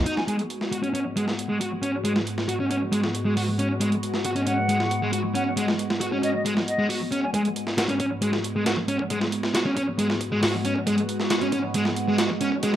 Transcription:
Already playing: B3 D#4 F#4
0.06 D#4, closed hi-hat
0.17 G#5, snare
0.28 G#2 G#3 B3 F#4 G#5, closed hi-hat
0.39 closed hi-hat
0.50 closed hi-hat
0.61 snare
0.72 F#4, closed hi-hat
0.83 C#4, closed hi-hat
0.94 C#4, closed hi-hat
1.17 G#3, closed hi-hat
1.28 snare
1.39 closed hi-hat
1.49 G#3
1.60 F#4, closed hi-hat
1.82 C#4, closed hi-hat
2.04 G#3, closed hi-hat
2.16 snare
2.27 closed hi-hat
2.38 snare
2.48 F#4, closed hi-hat
2.60 C#4
2.71 C#4, closed hi-hat
2.92 G#3, closed hi-hat
3.04 snare
3.15 closed hi-hat
3.25 G#3
3.37 F#4, open hi-hat
3.59 C#4, closed hi-hat
3.81 G#3, closed hi-hat
3.92 closed hi-hat
4.03 closed hi-hat
4.14 snare
4.25 F#4, closed hi-hat
4.36 C#4, closed hi-hat
4.47 C#4 F#5, closed hi-hat
4.69 G#3, closed hi-hat
4.80 snare
4.91 closed hi-hat
5.02 G#3
5.12 F#4, closed hi-hat
5.35 C#4 F#5, closed hi-hat
5.47 F#5
5.57 G#3, closed hi-hat
5.68 snare
5.79 closed hi-hat
5.90 snare
6.01 F#4, closed hi-hat
6.12 C#4
6.23 C#4 D#5, closed hi-hat
6.35 D#5
6.45 G#3, closed hi-hat
6.57 snare
6.68 D#5, closed hi-hat
6.79 G#3
6.89 F#4, open hi-hat
7.12 C#4, closed hi-hat
7.23 G#5
7.34 G#2 G#3 B3 F#4 G#5, kick, closed hi-hat
7.45 closed hi-hat
7.56 closed hi-hat
7.67 snare
7.78 F#4, snare, closed hi-hat
7.89 C#4, closed hi-hat
8.00 C#4, kick, closed hi-hat
8.22 G#3, closed hi-hat
8.33 snare
8.44 closed hi-hat
8.56 G#3
8.66 F#4, snare, closed hi-hat
8.77 kick
8.88 C#4, closed hi-hat
8.99 kick
9.10 G#3, kick, closed hi-hat
9.21 snare
9.32 closed hi-hat
9.43 snare
9.54 F#4, snare, closed hi-hat
9.66 C#4
9.77 C#4, kick, closed hi-hat
9.99 G#3, closed hi-hat
10.10 snare
10.21 kick, closed hi-hat
10.32 G#3
10.43 F#4, snare, open hi-hat
10.65 C#4, closed hi-hat
10.76 kick
10.87 G#3, kick, closed hi-hat
10.98 closed hi-hat
11.09 closed hi-hat
11.20 snare
11.30 F#4, snare, closed hi-hat
11.41 C#4, closed hi-hat
11.52 C#4, kick, closed hi-hat
11.74 G#3, closed hi-hat
11.85 snare
11.96 closed hi-hat
12.08 G#3
12.18 F#4, snare, closed hi-hat
12.30 kick
12.41 C#4, closed hi-hat
12.52 kick
12.63 G#3, kick, closed hi-hat

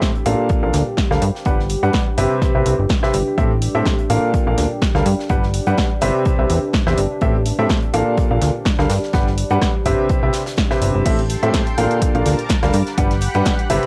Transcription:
Already playing: D4 G4 C5
0.02 kick, snare, closed hi-hat
0.15 closed hi-hat
0.26 A1 A#2 D4 A4 A#4 F5, closed hi-hat, open hi-hat
0.49 kick, closed hi-hat
0.63 A#1 A#2 D4 A4 A#4 F5
0.73 D2, snare, closed hi-hat, open hi-hat
0.97 kick, snare, closed hi-hat
1.11 D2 G3 D4 A4 A#4 F5, cross-stick, snare
1.22 G2, closed hi-hat, open hi-hat
1.35 snare
1.45 G1 G3 D4 G4 B4 F#5, kick, closed hi-hat
1.60 snare
1.69 closed hi-hat, open hi-hat
1.76 B4
1.83 G2 G3 D4 G4 B4 F#5, closed hi-hat
1.93 kick, snare, closed hi-hat
2.18 G1 C3 C4 G4 B4 E5, closed hi-hat, open hi-hat
2.42 kick, snare, closed hi-hat
2.55 C2 C3 C4 G4 B4 E5
2.66 C2, closed hi-hat, open hi-hat
2.79 G1
2.89 kick, snare, closed hi-hat
3.03 C3 C4 G4 B4 E5, cross-stick, snare
3.13 G1, closed hi-hat, open hi-hat
3.38 A1 A2 C4 G4 A4 E5, kick, closed hi-hat
3.62 closed hi-hat, open hi-hat
3.75 A2 C4 G4 A4 E5
3.82 C5, snare
3.86 kick, snare, closed hi-hat
3.99 closed hi-hat
4.10 A1 A#2 D4 A4 A#4 F5, closed hi-hat, open hi-hat
4.34 kick, closed hi-hat
4.47 A#1 A#2 D4 A4 A#4 F5
4.57 D2, snare, closed hi-hat, open hi-hat
4.82 kick, snare, closed hi-hat
4.94 D2 G3 D4 A4 A#4 F5, cross-stick, snare
5.05 G2, closed hi-hat, open hi-hat
5.19 snare
5.29 G1 G3 D4 G4 B4 F#5, kick, closed hi-hat
5.43 snare
5.47 B4
5.54 closed hi-hat, open hi-hat
5.66 G2 G3 D4 G4 B4 F#5, closed hi-hat
5.78 kick, snare, closed hi-hat
6.01 G1 C3 C4 G4 B4 E5, closed hi-hat, open hi-hat
6.25 kick, closed hi-hat
6.39 C2 C3 C4 G4 B4 E5
6.50 E2, closed hi-hat, open hi-hat
6.73 kick, snare, closed hi-hat
6.87 E2 C3 C4 G4 B4 E5, cross-stick, snare
6.98 G1, closed hi-hat, open hi-hat
7.21 A1 A2 C4 G4 A4 E5, kick, closed hi-hat
7.46 closed hi-hat, open hi-hat
7.57 A2 C4 G4 A4 C5 E5
7.69 kick, snare, closed hi-hat
7.82 closed hi-hat
7.94 A1 A#2 D4 A4 A#4 F5, closed hi-hat, open hi-hat
8.18 kick, closed hi-hat
8.31 A#1 A#2 D4 A4 A#4 F5
8.42 D2, snare, closed hi-hat, open hi-hat
8.65 kick, snare, closed hi-hat
8.79 D2 G3 D4 A4 A#4 F5, cross-stick, snare
8.90 G2, snare, closed hi-hat, open hi-hat
9.03 snare
9.13 G1 G3 D4 G4 B4 F#5, kick, snare, closed hi-hat
9.27 snare
9.38 closed hi-hat, open hi-hat
9.44 B4
9.50 G2 G3 D4 G4 B4 F#5, closed hi-hat
9.62 kick, cross-stick, snare, closed hi-hat
9.85 G1 C3 C4 G4 B4 E5, kick, closed hi-hat, open hi-hat
10.09 kick, closed hi-hat
10.23 C2 C3 C4 G4 B4 E5
10.33 snare, closed hi-hat, open hi-hat
10.46 snare, closed hi-hat
10.57 kick, snare, closed hi-hat
10.70 C3 C4 G4 B4 E5, cross-stick, snare
10.82 G1, closed hi-hat, open hi-hat
10.95 G1
11.05 A1 A2 C4 G4 A4 E5 G5 C6, kick, closed hi-hat, crash
11.19 closed hi-hat
11.30 closed hi-hat, open hi-hat
11.43 A2 C4 G4 A4 E5, closed hi-hat
11.49 C5
11.54 kick, snare, closed hi-hat
11.66 closed hi-hat
11.78 A1 A#2 D4 A4 A#4 F5, closed hi-hat, open hi-hat
11.91 closed hi-hat
12.02 A#4 A5 D6, kick, closed hi-hat
12.15 A#1 A#2 D4 A4 A#4 F5, closed hi-hat
12.26 D2, snare, closed hi-hat, open hi-hat
12.39 closed hi-hat
12.49 kick, snare, closed hi-hat
12.63 D2 G3 D4 A4 A#4 F5, cross-stick, snare, closed hi-hat
12.73 G2 G4 F#5 B5, closed hi-hat, open hi-hat
12.87 snare, closed hi-hat
12.98 G1 G3 D4 G4 B4 F#5, kick, closed hi-hat
13.11 snare, closed hi-hat
13.21 closed hi-hat, open hi-hat
13.34 G2 G3 D4 G4 B4 F#5, closed hi-hat
13.45 kick, snare, closed hi-hat
13.59 closed hi-hat
13.70 G1 C3 C4 G4 B4 E5, closed hi-hat, open hi-hat
13.83 closed hi-hat

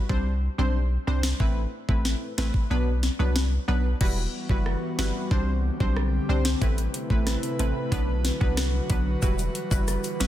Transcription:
0.09 C2 G3 C4 D4 C5, kick
0.58 B1 G3 C4 D4 C5
1.07 C2 G3 C4 D4 C5
1.23 snare
1.40 A1 A3 C4 E4 B4, kick
1.89 A1 A3 C4 E4 B4, kick
2.05 snare
2.38 A1 A3 C4 E4 B4, snare
2.54 kick
2.70 B1 F#3 B3 D4 B4
3.03 snare
3.19 C2 F#3 B3 D4 B4
3.36 snare
3.68 B1 F#3 B3 D4 B4
4.01 E1 E3 G3 B3 E4 F#4 B4, kick, crash
4.49 F#1 G3 E4 F#4 B4, kick
4.66 cross-stick
4.99 G1 G3 E4 F#4 B4, snare
5.31 C2 D3 G3 C4 D4 G4 C5, kick
5.80 B1 G3 C4 D4 C5, kick
5.97 cross-stick
6.29 C2 G3 C4 D4 C5
6.45 snare
6.61 A1 C3 A3 C4 E4 B4, kick, closed hi-hat
6.78 closed hi-hat
6.94 closed hi-hat
7.10 A1 A3 C4 E4 B4, kick
7.27 cross-stick, snare, closed hi-hat
7.43 closed hi-hat
7.59 A1 A3 C4 E4 B4, closed hi-hat
7.92 B1 D3 F#3 B3 D4 F#4 B4, kick, closed hi-hat
8.25 snare, closed hi-hat
8.41 C2 F#3 B3 D4 B4, kick
8.57 cross-stick, snare, closed hi-hat
8.90 B1 F#3 B3 D4 B4, kick, closed hi-hat
9.22 E1 E3 G3 E4 F#4 B4, kick, closed hi-hat, shaker
9.39 closed hi-hat, shaker
9.55 closed hi-hat
9.71 F#1 G3 E4 F#4 B4, kick, shaker
9.88 cross-stick, closed hi-hat, shaker
10.04 closed hi-hat, shaker
10.20 G1 G3 E4 F#4 B4, snare, closed hi-hat, shaker

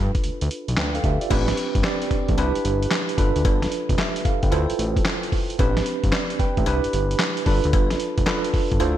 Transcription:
Already playing: G2 D4 F4 A4 B4
0.15 kick, closed hi-hat
0.24 D2, closed hi-hat
0.41 D2, closed hi-hat
0.51 closed hi-hat
0.68 B1, closed hi-hat
0.77 D2 B4 G5, snare, clap, closed hi-hat
0.95 A4 F5, closed hi-hat
1.04 D2 G4 E5, kick, closed hi-hat
1.21 F4 D5, closed hi-hat
1.30 A1 C4 D4 G4 B4, kick, closed hi-hat, crash, cowbell
1.48 snare, closed hi-hat
1.57 closed hi-hat
1.75 G1, kick, closed hi-hat
1.84 C4 D4 G4 D5, snare, clap, closed hi-hat, cowbell
2.02 closed hi-hat
2.11 A1, kick, closed hi-hat
2.28 A1, kick, closed hi-hat
2.37 C2 D4 E4 G4 B4, closed hi-hat, cowbell
2.55 G1, closed hi-hat
2.65 G1, closed hi-hat
2.83 closed hi-hat
2.91 snare, clap, closed hi-hat, cowbell
3.09 closed hi-hat
3.17 G1 D4 F4 A4 B4, kick, closed hi-hat
3.36 D2, closed hi-hat
3.45 G1, kick, closed hi-hat, cowbell
3.62 snare, closed hi-hat
3.72 closed hi-hat
3.89 F1, kick, closed hi-hat
3.98 G4 E5, snare, clap, closed hi-hat, cowbell
4.16 closed hi-hat
4.25 G1 A4 F5, kick, closed hi-hat
4.43 G1 B4 G5, kick, closed hi-hat
4.51 D2 E4 F4 A4 C5, closed hi-hat, cowbell
4.70 A1, closed hi-hat
4.79 A1, closed hi-hat
4.97 kick, closed hi-hat
5.05 snare, clap, closed hi-hat, cowbell
5.23 closed hi-hat
5.32 kick, open hi-hat
5.50 closed hi-hat
5.59 A1 C4 D4 G4 B4, kick, closed hi-hat, cowbell
5.77 snare, closed hi-hat
5.86 closed hi-hat
6.04 G1, kick, closed hi-hat
6.12 D5, snare, clap, closed hi-hat, cowbell
6.30 closed hi-hat
6.39 A1 B4 G5, kick, closed hi-hat
6.57 A1 G4 E5, kick, closed hi-hat
6.66 C2 D4 E4 G4 B4, closed hi-hat, cowbell
6.84 G1, closed hi-hat
6.93 G1, closed hi-hat
7.11 closed hi-hat
7.19 snare, clap, closed hi-hat, cowbell
7.37 closed hi-hat
7.46 G1 D4 F4 A4 B4, kick, open hi-hat
7.64 D2, closed hi-hat
7.73 G1, kick, closed hi-hat, cowbell
7.90 snare, closed hi-hat
8.00 closed hi-hat
8.18 F1, kick, closed hi-hat
8.26 D4 F4 A4 B4, snare, clap, closed hi-hat, cowbell
8.44 closed hi-hat
8.54 G1, kick, open hi-hat
8.71 G1, kick, closed hi-hat
8.80 D2 E4 F4 A4 C5, closed hi-hat, cowbell

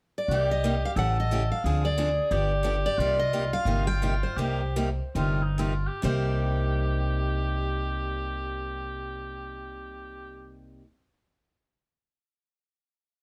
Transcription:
0.18 D5
0.28 C2 C3 G3 A#3 D#4 G4
0.32 G4
0.51 D#5
0.64 C3 G3 A#3 D#4 G4
0.85 F5
0.96 A1 C#3 E3 A3 C#4 G4 A4 F#5
1.20 D#5
1.31 C#3 E3 A3 C#4 G4
1.52 F5
1.64 D2 D3 F3 C4 D4 G#4
1.85 D5
1.98 D3 F3 C4 D4 G#4
2.31 G1 D3 F3 B3 D4 G4
2.63 D3 F3 B3 D4 G4
2.86 D5
2.98 C2 C3 G3 A#3 D#4 F4 G4
3.19 D#5
3.33 C3 G3 A#3 D#4 G4
3.53 F5
3.65 G1 C3 G3 A#3 D#4 G4
3.87 G5
4.02 C3 G3 A#3 D#4 G4
4.23 C5
4.37 C2 C3 G3 A#3 D#4 G4
4.76 C3 G3 A#3 D#4 G4
5.15 G1 C3 G3 A#3 D#4 F4 G4
5.42 D#4
5.58 C3 G3 A#3 D#4 F4 G4
5.87 G4
6.02 C2 C3 G3 A#3 D#4 G4 C5

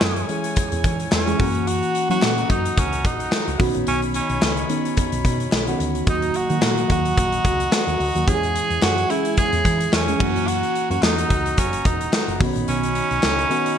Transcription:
Already playing: E3 G#3 C#4 E4 G#4 C#5 G#5
0.01 F#2, snare, clap, tambourine
0.16 closed hi-hat
0.29 E3 G#3 C#4 G#4, closed hi-hat
0.44 closed hi-hat
0.56 kick, closed hi-hat
0.72 E2, closed hi-hat
0.84 E3, kick, closed hi-hat
1.00 closed hi-hat
1.12 E2 C#4, snare, clap, tambourine
1.26 E3 G#3 C#4 G#4, closed hi-hat
1.39 F#2 E3 A#3 C#4 F#4 F#5 A#5, kick, open hi-hat
1.55 closed hi-hat
1.67 F#4, closed hi-hat
1.82 closed hi-hat
1.95 closed hi-hat
2.09 E3 F#3 A#3 C#4 F#4, closed hi-hat
2.22 A#2, snare, clap, tambourine
2.38 closed hi-hat
2.50 F#2 D#4, kick, closed hi-hat
2.65 closed hi-hat
2.77 C#2 C#4, kick, closed hi-hat
2.93 closed hi-hat
3.05 A#1 D#4, kick, closed hi-hat
3.20 closed hi-hat
3.32 snare, clap, tambourine
3.47 C#2, closed hi-hat
3.59 B1 D#3 B3 C#4 D#4 F#4 C#5 B5, kick, open hi-hat
3.75 A#1, closed hi-hat
3.87 B1 C#4, closed hi-hat
4.02 closed hi-hat
4.14 C#4, closed hi-hat
4.29 B1, closed hi-hat
4.42 C#2, snare, clap, tambourine
4.57 closed hi-hat
4.69 D#3 B3 C#4 D#4, closed hi-hat
4.85 closed hi-hat
4.97 kick, closed hi-hat
5.12 B1, closed hi-hat
5.25 B2, kick, closed hi-hat
5.40 closed hi-hat
5.52 B1, snare, clap, tambourine
5.67 D#3 B3 C#4 F#4, closed hi-hat
5.80 D2, closed hi-hat
5.95 closed hi-hat
6.07 D#2 D#3 F#3 A#3 D#4 F#4 D#5 A#5, kick, closed hi-hat
6.22 closed hi-hat
6.34 F#4, closed hi-hat
6.49 D#3 F#3 A#3 F#4, closed hi-hat
6.62 A#2, snare, clap, tambourine
6.77 closed hi-hat
6.90 D#2 F#4, kick, closed hi-hat
7.05 closed hi-hat
7.17 A#1, kick, closed hi-hat
7.32 closed hi-hat
7.45 C#2, kick, closed hi-hat
7.60 closed hi-hat
7.72 snare, clap, tambourine
7.87 D#2, closed hi-hat
8.00 D2, open hi-hat
8.15 D#2 D#3 F#3 A#3 F#4, closed hi-hat
8.27 E2 E3 G#3 C#4 E4 G4 G#4 C#5 G#5, kick, closed hi-hat
8.35 G#4
8.43 closed hi-hat
8.55 closed hi-hat
8.70 E2, closed hi-hat
8.82 F#2 F#4, snare, clap, tambourine
8.98 closed hi-hat
9.09 E3 G#3 C#4 E4 G#4, closed hi-hat
9.25 closed hi-hat
9.37 G#4, kick, closed hi-hat
9.53 E2, closed hi-hat
9.65 E3, kick, closed hi-hat
9.80 closed hi-hat
9.92 E2 C#4, snare, clap, tambourine
10.07 E3 G#3 C#4 G#4, closed hi-hat
10.19 F#2 E3 A3 C#4 F#4 F#5 A#5, kick, crash
10.26 A#3
10.36 closed hi-hat
10.47 F#4, closed hi-hat
10.63 closed hi-hat
10.75 closed hi-hat
10.90 F#2 E3 A#3 C#4 F#4, closed hi-hat
11.02 E2 D#4, snare, clap, tambourine
11.18 closed hi-hat
11.30 C#2, kick, closed hi-hat
11.46 closed hi-hat
11.58 F#1 C#4, kick, closed hi-hat
11.73 closed hi-hat
11.85 E1 D#4, kick, closed hi-hat
12.01 closed hi-hat
12.13 snare, clap, tambourine
12.28 F#1, closed hi-hat
12.39 B1 D#3 B3 C#4 D#4 F#4 C#5 B5, kick, open hi-hat
12.56 A#1, closed hi-hat
12.68 B1 C#4, closed hi-hat
12.83 closed hi-hat
12.95 closed hi-hat
13.11 B1, closed hi-hat
13.23 C#2, snare, clap, tambourine
13.39 closed hi-hat
13.50 D#3 B3 C#4 F#4 D#5, closed hi-hat
13.66 closed hi-hat

